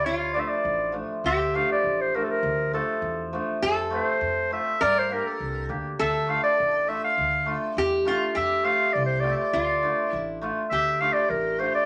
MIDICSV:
0, 0, Header, 1, 5, 480
1, 0, Start_track
1, 0, Key_signature, -1, "minor"
1, 0, Tempo, 596421
1, 36, Time_signature, 2, 2, 24, 8
1, 4356, Tempo, 589971
1, 9598, End_track
2, 0, Start_track
2, 0, Title_t, "Clarinet"
2, 0, Program_c, 0, 71
2, 33, Note_on_c, 0, 73, 87
2, 150, Note_off_c, 0, 73, 0
2, 155, Note_on_c, 0, 73, 72
2, 268, Note_off_c, 0, 73, 0
2, 271, Note_on_c, 0, 74, 77
2, 321, Note_on_c, 0, 76, 64
2, 333, Note_off_c, 0, 74, 0
2, 388, Note_on_c, 0, 74, 84
2, 400, Note_off_c, 0, 76, 0
2, 755, Note_off_c, 0, 74, 0
2, 1013, Note_on_c, 0, 76, 99
2, 1251, Note_on_c, 0, 77, 98
2, 1263, Note_off_c, 0, 76, 0
2, 1366, Note_off_c, 0, 77, 0
2, 1385, Note_on_c, 0, 74, 97
2, 1617, Note_on_c, 0, 72, 81
2, 1629, Note_off_c, 0, 74, 0
2, 1734, Note_on_c, 0, 70, 89
2, 1746, Note_off_c, 0, 72, 0
2, 1801, Note_on_c, 0, 69, 68
2, 1813, Note_off_c, 0, 70, 0
2, 1856, Note_on_c, 0, 70, 88
2, 1868, Note_off_c, 0, 69, 0
2, 2201, Note_off_c, 0, 70, 0
2, 2206, Note_on_c, 0, 69, 83
2, 2651, Note_off_c, 0, 69, 0
2, 3181, Note_on_c, 0, 72, 94
2, 3616, Note_off_c, 0, 72, 0
2, 3645, Note_on_c, 0, 76, 95
2, 3880, Note_on_c, 0, 74, 112
2, 3892, Note_off_c, 0, 76, 0
2, 4009, Note_on_c, 0, 72, 90
2, 4021, Note_off_c, 0, 74, 0
2, 4132, Note_on_c, 0, 70, 73
2, 4144, Note_off_c, 0, 72, 0
2, 4238, Note_on_c, 0, 69, 76
2, 4250, Note_off_c, 0, 70, 0
2, 4597, Note_off_c, 0, 69, 0
2, 4841, Note_on_c, 0, 76, 98
2, 5078, Note_on_c, 0, 77, 90
2, 5090, Note_off_c, 0, 76, 0
2, 5182, Note_off_c, 0, 77, 0
2, 5187, Note_on_c, 0, 74, 93
2, 5557, Note_on_c, 0, 76, 83
2, 5570, Note_off_c, 0, 74, 0
2, 5678, Note_off_c, 0, 76, 0
2, 5682, Note_on_c, 0, 77, 91
2, 6128, Note_off_c, 0, 77, 0
2, 6759, Note_on_c, 0, 76, 108
2, 6990, Note_on_c, 0, 77, 104
2, 7002, Note_off_c, 0, 76, 0
2, 7216, Note_on_c, 0, 74, 91
2, 7228, Note_off_c, 0, 77, 0
2, 7315, Note_off_c, 0, 74, 0
2, 7320, Note_on_c, 0, 72, 83
2, 7435, Note_on_c, 0, 74, 78
2, 7447, Note_off_c, 0, 72, 0
2, 7528, Note_on_c, 0, 76, 66
2, 7540, Note_off_c, 0, 74, 0
2, 7554, Note_on_c, 0, 74, 89
2, 7567, Note_off_c, 0, 76, 0
2, 8414, Note_off_c, 0, 74, 0
2, 8650, Note_on_c, 0, 76, 111
2, 8904, Note_on_c, 0, 77, 99
2, 8916, Note_off_c, 0, 76, 0
2, 9010, Note_on_c, 0, 74, 93
2, 9022, Note_off_c, 0, 77, 0
2, 9143, Note_on_c, 0, 70, 81
2, 9156, Note_off_c, 0, 74, 0
2, 9389, Note_on_c, 0, 72, 80
2, 9401, Note_off_c, 0, 70, 0
2, 9505, Note_off_c, 0, 72, 0
2, 9509, Note_on_c, 0, 74, 100
2, 9598, Note_off_c, 0, 74, 0
2, 9598, End_track
3, 0, Start_track
3, 0, Title_t, "Resonator guitar played with a steel bar"
3, 0, Program_c, 1, 25
3, 48, Note_on_c, 1, 65, 73
3, 733, Note_off_c, 1, 65, 0
3, 1011, Note_on_c, 1, 67, 82
3, 2917, Note_on_c, 1, 69, 93
3, 2983, Note_off_c, 1, 67, 0
3, 3865, Note_off_c, 1, 69, 0
3, 3868, Note_on_c, 1, 70, 94
3, 4558, Note_off_c, 1, 70, 0
3, 4829, Note_on_c, 1, 69, 86
3, 6280, Note_off_c, 1, 69, 0
3, 6283, Note_on_c, 1, 67, 97
3, 6504, Note_off_c, 1, 67, 0
3, 6523, Note_on_c, 1, 65, 79
3, 6744, Note_off_c, 1, 65, 0
3, 6745, Note_on_c, 1, 67, 81
3, 7709, Note_on_c, 1, 65, 67
3, 7740, Note_off_c, 1, 67, 0
3, 8181, Note_off_c, 1, 65, 0
3, 8181, Note_on_c, 1, 64, 67
3, 8399, Note_off_c, 1, 64, 0
3, 8677, Note_on_c, 1, 67, 75
3, 9598, Note_off_c, 1, 67, 0
3, 9598, End_track
4, 0, Start_track
4, 0, Title_t, "Hammered dulcimer"
4, 0, Program_c, 2, 15
4, 275, Note_on_c, 2, 53, 67
4, 279, Note_on_c, 2, 57, 64
4, 292, Note_on_c, 2, 62, 77
4, 399, Note_off_c, 2, 57, 0
4, 406, Note_off_c, 2, 62, 0
4, 732, Note_off_c, 2, 53, 0
4, 742, Note_on_c, 2, 53, 64
4, 750, Note_on_c, 2, 57, 51
4, 754, Note_on_c, 2, 62, 63
4, 875, Note_off_c, 2, 57, 0
4, 878, Note_off_c, 2, 62, 0
4, 1041, Note_off_c, 2, 53, 0
4, 1239, Note_on_c, 2, 53, 71
4, 1246, Note_on_c, 2, 57, 69
4, 1249, Note_on_c, 2, 62, 85
4, 1364, Note_off_c, 2, 57, 0
4, 1365, Note_off_c, 2, 62, 0
4, 1716, Note_off_c, 2, 53, 0
4, 1726, Note_on_c, 2, 53, 68
4, 1727, Note_on_c, 2, 57, 62
4, 1738, Note_on_c, 2, 62, 66
4, 1845, Note_off_c, 2, 57, 0
4, 1850, Note_off_c, 2, 62, 0
4, 2190, Note_off_c, 2, 53, 0
4, 2199, Note_on_c, 2, 53, 78
4, 2207, Note_on_c, 2, 57, 70
4, 2212, Note_on_c, 2, 62, 81
4, 2324, Note_off_c, 2, 57, 0
4, 2327, Note_off_c, 2, 62, 0
4, 2668, Note_off_c, 2, 53, 0
4, 2677, Note_on_c, 2, 53, 65
4, 2682, Note_on_c, 2, 57, 67
4, 2693, Note_on_c, 2, 62, 73
4, 2801, Note_off_c, 2, 57, 0
4, 2807, Note_off_c, 2, 62, 0
4, 2961, Note_off_c, 2, 53, 0
4, 3140, Note_on_c, 2, 57, 78
4, 3154, Note_on_c, 2, 60, 73
4, 3157, Note_on_c, 2, 65, 84
4, 3270, Note_off_c, 2, 57, 0
4, 3276, Note_off_c, 2, 60, 0
4, 3278, Note_off_c, 2, 65, 0
4, 3627, Note_on_c, 2, 57, 62
4, 3630, Note_on_c, 2, 60, 59
4, 3641, Note_on_c, 2, 65, 75
4, 3752, Note_off_c, 2, 57, 0
4, 3753, Note_off_c, 2, 60, 0
4, 3759, Note_off_c, 2, 65, 0
4, 4095, Note_on_c, 2, 58, 71
4, 4101, Note_on_c, 2, 62, 64
4, 4116, Note_on_c, 2, 67, 85
4, 4225, Note_off_c, 2, 58, 0
4, 4227, Note_off_c, 2, 62, 0
4, 4235, Note_off_c, 2, 67, 0
4, 4581, Note_on_c, 2, 58, 61
4, 4582, Note_on_c, 2, 62, 59
4, 4587, Note_on_c, 2, 67, 69
4, 4709, Note_off_c, 2, 58, 0
4, 4709, Note_off_c, 2, 62, 0
4, 4711, Note_off_c, 2, 67, 0
4, 5053, Note_on_c, 2, 57, 74
4, 5065, Note_on_c, 2, 65, 78
4, 5066, Note_on_c, 2, 62, 65
4, 5185, Note_off_c, 2, 57, 0
4, 5191, Note_off_c, 2, 65, 0
4, 5192, Note_off_c, 2, 62, 0
4, 5545, Note_on_c, 2, 57, 70
4, 5555, Note_on_c, 2, 62, 59
4, 5564, Note_on_c, 2, 65, 65
4, 5671, Note_off_c, 2, 57, 0
4, 5676, Note_off_c, 2, 62, 0
4, 5681, Note_off_c, 2, 65, 0
4, 6018, Note_on_c, 2, 57, 70
4, 6023, Note_on_c, 2, 62, 69
4, 6034, Note_on_c, 2, 65, 76
4, 6148, Note_off_c, 2, 57, 0
4, 6151, Note_off_c, 2, 62, 0
4, 6156, Note_off_c, 2, 65, 0
4, 6503, Note_on_c, 2, 57, 75
4, 6506, Note_on_c, 2, 62, 67
4, 6514, Note_on_c, 2, 65, 96
4, 6631, Note_off_c, 2, 57, 0
4, 6633, Note_off_c, 2, 62, 0
4, 6636, Note_off_c, 2, 65, 0
4, 6971, Note_on_c, 2, 57, 71
4, 6982, Note_on_c, 2, 60, 59
4, 6991, Note_on_c, 2, 65, 84
4, 7105, Note_off_c, 2, 57, 0
4, 7110, Note_off_c, 2, 60, 0
4, 7115, Note_off_c, 2, 65, 0
4, 7446, Note_on_c, 2, 57, 60
4, 7458, Note_on_c, 2, 60, 58
4, 7470, Note_on_c, 2, 65, 76
4, 7582, Note_off_c, 2, 57, 0
4, 7588, Note_off_c, 2, 60, 0
4, 7594, Note_off_c, 2, 65, 0
4, 7946, Note_on_c, 2, 57, 68
4, 7951, Note_on_c, 2, 62, 67
4, 7960, Note_on_c, 2, 65, 79
4, 8072, Note_off_c, 2, 57, 0
4, 8074, Note_off_c, 2, 62, 0
4, 8078, Note_off_c, 2, 65, 0
4, 8426, Note_on_c, 2, 57, 73
4, 8433, Note_on_c, 2, 62, 74
4, 8437, Note_on_c, 2, 65, 72
4, 8550, Note_off_c, 2, 57, 0
4, 8554, Note_off_c, 2, 62, 0
4, 8556, Note_off_c, 2, 65, 0
4, 8907, Note_on_c, 2, 57, 68
4, 8908, Note_on_c, 2, 62, 67
4, 8917, Note_on_c, 2, 65, 76
4, 9030, Note_off_c, 2, 57, 0
4, 9031, Note_off_c, 2, 62, 0
4, 9035, Note_off_c, 2, 65, 0
4, 9377, Note_on_c, 2, 57, 63
4, 9386, Note_on_c, 2, 62, 61
4, 9389, Note_on_c, 2, 65, 65
4, 9504, Note_off_c, 2, 57, 0
4, 9509, Note_off_c, 2, 62, 0
4, 9510, Note_off_c, 2, 65, 0
4, 9598, End_track
5, 0, Start_track
5, 0, Title_t, "Upright bass"
5, 0, Program_c, 3, 32
5, 33, Note_on_c, 3, 38, 94
5, 324, Note_off_c, 3, 38, 0
5, 522, Note_on_c, 3, 33, 85
5, 810, Note_off_c, 3, 33, 0
5, 1000, Note_on_c, 3, 38, 92
5, 1289, Note_off_c, 3, 38, 0
5, 1481, Note_on_c, 3, 33, 73
5, 1769, Note_off_c, 3, 33, 0
5, 1954, Note_on_c, 3, 38, 94
5, 2245, Note_off_c, 3, 38, 0
5, 2430, Note_on_c, 3, 40, 88
5, 2721, Note_off_c, 3, 40, 0
5, 2919, Note_on_c, 3, 41, 97
5, 3207, Note_off_c, 3, 41, 0
5, 3388, Note_on_c, 3, 41, 90
5, 3678, Note_off_c, 3, 41, 0
5, 3877, Note_on_c, 3, 43, 96
5, 4163, Note_off_c, 3, 43, 0
5, 4349, Note_on_c, 3, 36, 83
5, 4568, Note_off_c, 3, 36, 0
5, 4588, Note_on_c, 3, 38, 81
5, 4808, Note_off_c, 3, 38, 0
5, 4832, Note_on_c, 3, 38, 94
5, 5122, Note_off_c, 3, 38, 0
5, 5321, Note_on_c, 3, 33, 83
5, 5609, Note_off_c, 3, 33, 0
5, 5793, Note_on_c, 3, 38, 91
5, 6083, Note_off_c, 3, 38, 0
5, 6272, Note_on_c, 3, 40, 92
5, 6562, Note_off_c, 3, 40, 0
5, 6753, Note_on_c, 3, 41, 82
5, 7043, Note_off_c, 3, 41, 0
5, 7238, Note_on_c, 3, 36, 91
5, 7526, Note_off_c, 3, 36, 0
5, 7707, Note_on_c, 3, 38, 84
5, 7998, Note_off_c, 3, 38, 0
5, 8192, Note_on_c, 3, 33, 85
5, 8481, Note_off_c, 3, 33, 0
5, 8669, Note_on_c, 3, 38, 91
5, 8958, Note_off_c, 3, 38, 0
5, 9145, Note_on_c, 3, 33, 85
5, 9434, Note_off_c, 3, 33, 0
5, 9598, End_track
0, 0, End_of_file